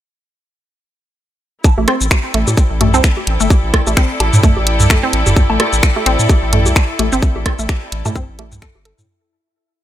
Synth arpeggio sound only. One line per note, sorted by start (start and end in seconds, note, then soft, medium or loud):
1.78 1.82 A3 medium
1.88 1.93 C4 medium
2.34 2.39 A3 medium
2.81 2.86 A3 medium
2.94 2.98 C4 loud
3.40 3.44 A3 medium
3.87 3.91 A3 medium
3.97 4.02 C4 medium
4.43 4.49 A3 medium
4.90 4.95 A3 medium
5.03 5.07 C4 loud
5.50 5.54 A3 medium
5.96 6.00 A3 medium
6.06 6.11 C4 loud
6.53 6.58 A3 medium
6.99 7.04 A3 medium
7.12 7.16 C4 loud
7.59 7.63 A3 medium
8.06 8.09 A3 medium
8.15 8.21 C4 loud
8.39 8.44 A3 medium
8.62 8.67 A4 medium
8.85 8.93 A4 medium